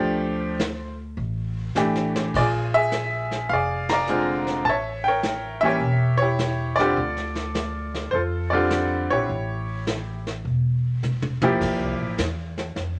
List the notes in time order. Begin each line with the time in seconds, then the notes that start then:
Already playing: F3 A3 D4 F4 G4 A4 C5
0.01 D2, brush sweep, kick
0.59 snare, hi-hat pedal
1.17 A1, brush sweep, kick
1.75 A1 E3 A3 D4 G4, snare, hi-hat pedal
1.96 snare
2.16 snare
2.34 A#1 F4 D5, brush sweep, kick, crash
2.38 G#4
2.74 G#4 E5
2.91 snare, hi-hat pedal
3.31 snare
3.49 F1 G#4 F5, brush sweep, kick
3.53 D5
3.89 D5 A#5, snare, ride
3.93 F5
4.07 D3 G#3 C4 F4, hi-hat pedal
4.47 snare
4.65 A1 A5, brush sweep, kick
4.69 C#5 E5
5.04 C#5 G5
5.08 A#4
5.23 snare, hi-hat pedal
5.61 E3 G3 A#3 C#4 E5
5.65 G4 C#5
5.80 E1, brush sweep, kick
6.17 C#5
6.22 E4 G4
6.38 snare, hi-hat pedal
6.76 D3 D5, snare
6.80 G3 C4 F4 G4 A4
6.97 D2, brush sweep, kick
7.17 snare
7.35 snare
7.55 snare, hi-hat pedal
7.94 snare
8.11 F2 A4 C5, brush sweep, kick
8.15 F4
8.50 D3 G3 C4 F4 A4 D5
8.70 snare, hi-hat pedal
9.10 A#1 E4 G4 C#5
9.29 A1, brush sweep, kick
9.87 snare, hi-hat pedal
10.27 snare
10.45 E1, brush sweep, kick
11.03 hi-hat pedal, mid tom
11.22 mid tom
11.42 F3 A#3 E4 G4, mid tom
11.60 D2, brush sweep, kick, snare, crash
11.79 C2
11.99 A1
12.18 E2, kick, snare, hi-hat pedal
12.58 snare
12.76 F2, brush sweep, kick, snare